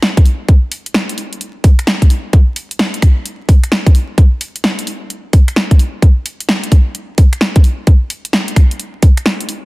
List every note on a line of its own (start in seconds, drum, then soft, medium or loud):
0.02 snare loud
0.17 kick loud
0.17 closed hi-hat medium
0.25 open hi-hat medium
0.49 kick loud
0.49 closed hi-hat medium
0.72 open hi-hat loud
0.86 closed hi-hat medium
0.94 snare loud
1.09 closed hi-hat medium
1.18 open hi-hat medium
1.33 closed hi-hat soft
1.41 closed hi-hat medium
1.64 kick loud
1.64 open hi-hat loud
1.79 finger snap soft
1.79 closed hi-hat medium
1.87 snare loud
2.02 kick medium
2.02 closed hi-hat medium
2.10 open hi-hat medium
2.33 kick loud
2.33 closed hi-hat medium
2.56 open hi-hat loud
2.71 closed hi-hat medium
2.79 snare loud
2.94 closed hi-hat medium
3.02 finger snap medium
3.02 kick medium
3.02 open hi-hat medium
3.25 closed hi-hat medium
3.49 kick loud
3.49 open hi-hat loud
3.63 finger snap soft
3.63 closed hi-hat medium
3.72 snare loud
3.86 kick loud
3.86 closed hi-hat medium
3.95 open hi-hat medium
4.18 kick loud
4.18 closed hi-hat medium
4.41 open hi-hat loud
4.56 closed hi-hat medium
4.64 snare loud
4.79 closed hi-hat medium
4.87 open hi-hat medium
5.10 closed hi-hat medium
5.33 kick loud
5.33 open hi-hat loud
5.48 finger snap soft
5.48 closed hi-hat medium
5.56 snare loud
5.71 kick medium
5.71 closed hi-hat medium
5.79 open hi-hat medium
6.02 kick loud
6.02 closed hi-hat medium
6.26 open hi-hat loud
6.40 closed hi-hat medium
6.49 snare loud
6.64 closed hi-hat medium
6.72 kick medium
6.72 open hi-hat medium
6.95 closed hi-hat medium
7.18 kick medium
7.18 open hi-hat loud
7.33 finger snap soft
7.33 closed hi-hat medium
7.41 snare loud
7.56 kick loud
7.56 closed hi-hat medium
7.64 open hi-hat loud
7.87 kick loud
7.87 closed hi-hat medium
8.10 open hi-hat loud
8.25 closed hi-hat medium
8.33 snare loud
8.48 closed hi-hat medium
8.56 finger snap medium
8.56 kick medium
8.56 open hi-hat loud
8.71 closed hi-hat soft
8.79 closed hi-hat medium
9.02 kick loud
9.02 open hi-hat loud
9.17 finger snap soft
9.17 closed hi-hat medium
9.26 snare loud
9.41 closed hi-hat medium
9.49 open hi-hat loud